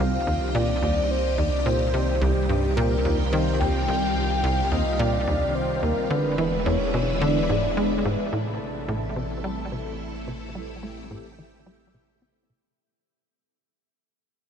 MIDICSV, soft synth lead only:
0, 0, Header, 1, 2, 480
1, 0, Start_track
1, 0, Tempo, 555556
1, 1435, Time_signature, 4, 2, 24, 8
1, 12520, End_track
2, 0, Start_track
2, 0, Title_t, "Soft synth lead"
2, 0, Program_c, 0, 80
2, 0, Note_on_c, 0, 77, 103
2, 475, Note_on_c, 0, 74, 102
2, 487, Note_off_c, 0, 77, 0
2, 958, Note_on_c, 0, 72, 94
2, 971, Note_off_c, 0, 74, 0
2, 1197, Note_on_c, 0, 74, 95
2, 1210, Note_off_c, 0, 72, 0
2, 1434, Note_on_c, 0, 72, 112
2, 1447, Note_off_c, 0, 74, 0
2, 1913, Note_on_c, 0, 67, 98
2, 1926, Note_off_c, 0, 72, 0
2, 2386, Note_off_c, 0, 67, 0
2, 2391, Note_on_c, 0, 70, 105
2, 2872, Note_on_c, 0, 72, 105
2, 2885, Note_off_c, 0, 70, 0
2, 3111, Note_on_c, 0, 79, 122
2, 3124, Note_off_c, 0, 72, 0
2, 4074, Note_on_c, 0, 75, 100
2, 4087, Note_off_c, 0, 79, 0
2, 4312, Note_on_c, 0, 74, 112
2, 4325, Note_off_c, 0, 75, 0
2, 4795, Note_on_c, 0, 72, 99
2, 4808, Note_off_c, 0, 74, 0
2, 4971, Note_off_c, 0, 72, 0
2, 4976, Note_on_c, 0, 72, 69
2, 5037, Note_on_c, 0, 70, 96
2, 5050, Note_off_c, 0, 72, 0
2, 5276, Note_on_c, 0, 71, 103
2, 5289, Note_off_c, 0, 70, 0
2, 5755, Note_on_c, 0, 73, 101
2, 5768, Note_off_c, 0, 71, 0
2, 6235, Note_on_c, 0, 74, 96
2, 6247, Note_off_c, 0, 73, 0
2, 6955, Note_off_c, 0, 74, 0
2, 12520, End_track
0, 0, End_of_file